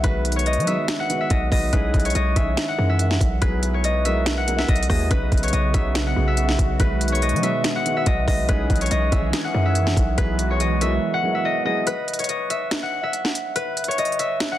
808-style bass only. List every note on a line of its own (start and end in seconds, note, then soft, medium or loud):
0.04 0.59 B1 loud
0.57 0.77 F#3 loud
1.31 1.51 B1 loud
1.52 1.72 B1 loud
1.73 1.93 B1 loud
1.94 2.14 B1 loud
2.15 2.35 B1 loud
2.36 2.56 B1 loud
2.79 3.19 F#2 loud
3.21 3.41 B1 loud
3.42 4.65 B1 loud
4.69 4.89 B1 loud
4.90 5.10 D#2 loud
5.11 5.31 B1 loud
5.32 5.52 B1 loud
5.53 5.73 B1 loud
5.74 6.15 B1 loud
6.16 6.57 B1 loud
6.59 6.79 B1 loud
6.80 7.35 B1 loud
7.33 7.53 F#3 loud
8.07 8.27 B1 loud
8.28 8.48 B1 loud
8.49 8.69 B1 loud
8.70 8.90 B1 loud
8.91 9.11 B1 loud
9.12 9.32 B1 loud
9.54 9.95 F#2 loud
9.97 10.17 B1 loud
10.18 10.99 B1 loud